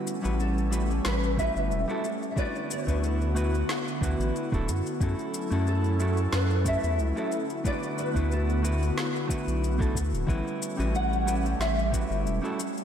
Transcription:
Already playing: hollow-body jazz guitar G3 C#4 E4 F#4 B4, analog synth pad G3 A3 C#4
0.07 shaker
0.22 analog synth bass A1, hollow-body jazz guitar G3 C#4 E4 F#4 B4, shaker
0.40 nylon-string guitar A4, shaker
0.58 shaker
0.70 hollow-body jazz guitar G3 C#4 E4 F#4 B4, shaker
0.90 shaker
1.05 analog synth bass A1, nylon-string guitar B4, snare, shaker
1.24 shaker
1.37 hollow-body jazz guitar G3 C#4 E4 F#4 B4, nylon-string guitar E5, kick, shaker
1.56 analog synth bass G1, shaker
1.71 analog synth bass E1, shaker
1.88 hollow-body jazz guitar G3 C#4 E4 F#4 A4, shaker
2.04 shaker
2.22 shaker
2.31 nylon-string guitar E5
2.36 analog synth pad D3 B3 E4 F#4, hollow-body jazz guitar A3 D4 E4 F#4 B4, nylon-string guitar D5, kick, shaker
2.55 shaker
2.71 nylon-string guitar B4, shaker
2.87 analog synth bass D2, hollow-body jazz guitar A3 D4 E4 F#4 B4, kick, shaker
3.04 nylon-string guitar A4, shaker
3.21 shaker
3.35 hollow-body jazz guitar A3 D4 E4 F#4 B4, shaker
3.54 shaker
3.69 snare, shaker
3.88 shaker
4.01 analog synth bass D2, hollow-body jazz guitar A3 D4 E4 F#4 B4, kick, shaker
4.19 analog synth bass A1, shaker
4.36 shaker
4.52 analog synth bass D1, hollow-body jazz guitar A3 D4 E4 F#4 A4, kick, shaker
4.68 analog synth bass F#2, shaker
4.86 shaker
5.00 analog synth bass F#2, analog synth pad F#3 C#4 A4, hollow-body jazz guitar A3 C#4 E4 F#4 A4, kick, shaker
5.19 shaker
5.34 shaker
5.50 analog synth bass F#2, hollow-body jazz guitar A3 C#4 E4 F#4 A4, shaker
5.67 nylon-string guitar A4, shaker
5.84 shaker
5.99 hollow-body jazz guitar A3 C#4 E4 F#4 A4, shaker
6.17 shaker
6.33 analog synth bass F#2, nylon-string guitar B4, snare, shaker
6.50 shaker
6.64 hollow-body jazz guitar A3 C#4 E4 F#4 A4, nylon-string guitar E5, kick, shaker
6.84 analog synth bass E2, shaker
6.99 analog synth bass C#2, shaker
7.15 hollow-body jazz guitar A3 C#4 E4 F#4 A4, shaker
7.31 analog synth pad D3 B3 F#4, shaker
7.50 shaker
7.64 hollow-body jazz guitar A3 D4 E4 F#4 B4, nylon-string guitar D5, kick, shaker
7.83 shaker
7.98 nylon-string guitar B4, shaker
8.14 analog synth bass D2, hollow-body jazz guitar A3 D4 E4 F#4 B4, kick, shaker
8.32 nylon-string guitar A4, shaker
8.50 shaker
8.62 hollow-body jazz guitar A3 D4 E4 F#4 B4, shaker
8.83 shaker
8.98 snare, shaker
9.16 shaker
9.27 hollow-body jazz guitar A3 D4 E4 F#4 B4, kick, shaker
9.48 analog synth bass B1, shaker
9.64 shaker
9.78 hollow-body jazz guitar A3 D4 E4 F#4 A4, kick, shaker
9.95 analog synth bass D2, kick, shaker
10.13 analog synth bass D1, shaker
10.27 analog synth bass A1, hollow-body jazz guitar G3 C#4 E4 F#4 B4, analog synth pad G3 A3 C#4, kick, shaker
10.47 shaker
10.62 shaker
10.77 analog synth bass A1, hollow-body jazz guitar G3 C#4 E4 F#4 B4, shaker
10.95 nylon-string guitar F#5, shaker
11.13 shaker
11.25 hollow-body jazz guitar G3 C#4 E4 F#4 B4, shaker
11.46 shaker
11.59 analog synth bass A1, nylon-string guitar E5, snare, shaker
11.79 shaker
11.91 hollow-body jazz guitar G3 C#4 E4 F#4 B4, kick, shaker
12.10 analog synth bass G1, shaker
12.26 analog synth bass E1, shaker
12.42 hollow-body jazz guitar G3 C#4 E4 F#4 A4, shaker
12.60 shaker
12.78 shaker

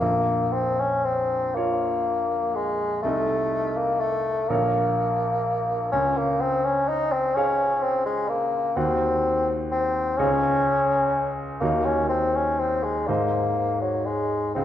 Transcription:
0.00 grand piano A#1, bassoon A#3
0.53 bassoon C4
0.79 bassoon C#4
1.05 bassoon C4
1.55 bassoon A#3, grand piano F4 C#5
2.55 bassoon G#3
3.02 grand piano C2 D#4 A4 D#5, bassoon A3
3.77 bassoon A#3
4.00 bassoon A3
4.48 grand piano A#1 A#4 C#5 F5, bassoon A#3
5.92 grand piano C#2, bassoon C#4
6.17 bassoon A#3
6.41 bassoon C4
6.64 bassoon C#4
6.89 bassoon D#4
7.12 bassoon C4
7.35 bassoon C#4, grand piano G#4 C#5 F5
7.82 bassoon C4
8.05 bassoon G#3
8.29 bassoon A#3
8.76 grand piano D#2 F#4 F#5, bassoon C4
9.71 bassoon C4
10.17 grand piano C#2 G#4 C#5 F5, bassoon C#4
11.60 grand piano D#2 F#4 C#5 D#5, bassoon A#3
11.85 bassoon C#4
12.09 bassoon C4
12.35 bassoon C#4
12.59 bassoon C4
12.83 bassoon G#3
13.07 grand piano G#2 G#4 C5 D#5, bassoon A#3
13.81 bassoon F#3
14.06 bassoon G#3
14.55 grand piano C#2 G#4 C5 F5, bassoon C4

